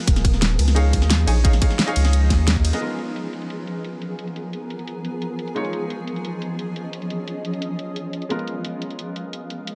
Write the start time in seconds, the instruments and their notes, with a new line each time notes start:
Already playing: ambient pad F3
0.07 sub bass D#1, ambient pad C#4 D#4 G#4, kick, closed hi-hat
0.16 snare, closed hi-hat
0.25 kick, closed hi-hat, ride
0.34 snare
0.42 snare, closed hi-hat
0.59 sub bass C#2, closed hi-hat, ride
0.68 snare, closed hi-hat
0.75 grand piano D#4 G#4 C#5 F5, closed hi-hat
0.93 kick, closed hi-hat, ride
1.02 sub bass D#2, snare
1.10 snare, closed hi-hat
1.27 sub bass A#1, grand piano D#4 G#4 C#5 G#5, closed hi-hat, ride
1.44 grand piano D#4 G#4 C#5 F5, kick, closed hi-hat
1.53 snare, closed hi-hat
1.61 grand piano D#4 G#4 C#5 F5, kick, closed hi-hat, ride
1.71 snare
1.79 snare, closed hi-hat
1.86 grand piano D#4 G#4 C#5 F5, closed hi-hat
1.96 sub bass C#2, closed hi-hat, ride
2.05 snare, closed hi-hat
2.13 closed hi-hat
2.30 sub bass D#2, kick, snare, closed hi-hat, ride
2.48 snare, closed hi-hat
2.56 kick
2.65 closed hi-hat, ride
2.73 grand piano B3 G#4 A#4 D#5, snare, closed hi-hat
2.81 ambient pad F3 B3 G#4 A#4, grand piano G#3 B3 F4 A#4, closed hi-hat
2.90 closed hi-hat
2.99 closed hi-hat
3.16 closed hi-hat
3.33 closed hi-hat
3.42 closed hi-hat
3.50 closed hi-hat
3.67 closed hi-hat
3.84 closed hi-hat
4.02 closed hi-hat
4.19 closed hi-hat
4.27 closed hi-hat
4.36 closed hi-hat
4.53 closed hi-hat
4.70 closed hi-hat
4.79 closed hi-hat
4.87 closed hi-hat
5.05 closed hi-hat
5.22 closed hi-hat
5.39 closed hi-hat
5.48 closed hi-hat
5.55 grand piano G#3 D#4 F4 C#5, ambient pad C#4 D#5, closed hi-hat
5.65 closed hi-hat
5.73 closed hi-hat
5.90 closed hi-hat
6.07 closed hi-hat
6.16 closed hi-hat
6.25 closed hi-hat
6.42 closed hi-hat
6.59 closed hi-hat
6.76 closed hi-hat
6.93 closed hi-hat
7.02 closed hi-hat
7.10 closed hi-hat
7.28 closed hi-hat
7.45 closed hi-hat
7.53 closed hi-hat
7.62 closed hi-hat
7.79 closed hi-hat
7.96 closed hi-hat
8.13 closed hi-hat
8.22 closed hi-hat
8.29 grand piano G#3 B3 F4 A#4, ambient pad G#3 B3 A#4 F5, closed hi-hat
8.39 closed hi-hat
8.47 closed hi-hat
8.65 closed hi-hat
8.82 closed hi-hat
8.90 closed hi-hat
8.99 closed hi-hat
9.16 closed hi-hat
9.33 closed hi-hat
9.50 closed hi-hat
9.67 closed hi-hat